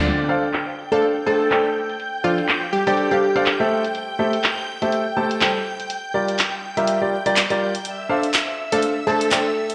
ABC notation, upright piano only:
X:1
M:4/4
L:1/16
Q:"Swing 16ths" 1/4=123
K:Dm
V:1 name="Upright piano"
[D,CDFd]2 [DAcdf] z4 [DAcdf]2 z [DAcda]2 [DAcdg] z3 | z2 [DAcdf]2 z3 [DAcdg]2 [DAcdf] z [DAcdf] z [A,GAce]2 z | z2 [A,GAce] z4 [A,GAce]2 z [A,GAca]2 [G,GAcg] z3 | z2 [G,FGBd]2 z3 [G,FGBe]2 [G,FGBd] z [G,FGBd] z [G,FGBd]2 z |
z2 [DAcdf] z4 [DAcdf]2 z [DAcda]2 [DAcdg] z3 |]